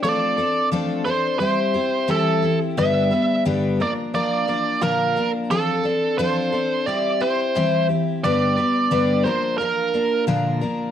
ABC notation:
X:1
M:4/4
L:1/16
Q:1/4=88
K:C
V:1 name="Lead electric guitar"
d4 z2 c2 c4 A3 z | e4 z2 d2 d4 _B3 z | A4 c4 d2 c4 z2 | d6 c2 _B4 z4 |]
V:2 name="Twelve-string acoustic guitar"
[F,A,CDA]2 [CDA]2 [F,A,CDA]2 [CDA]2 [G,CEG]2 [CEG]2 [E,G,CEG]2 [CEG]2 | [G,,D,G,B,DB]2 [G,B,DB]2 [G,,D,G,B,DB]2 [F,_B,D_B]2 [F,B,DB]2 [F,B,DB]2 [_B,,D,F,B,DB]2 [F,B,DB]2 | [F,CDA]2 [CDA]2 [F,CDA]2 [CDA]2 [G,CEG]2 [CEG]2 [E,G,CEG]2 [CEG]2 | [G,,D,G,B,DB]2 [G,B,DB]2 [G,,D,G,B,DB]2 [F,_B,D_B]2 [F,B,DB]2 [F,B,DB]2 [_B,,D,F,B,DB]2 [F,B,DB]2 |]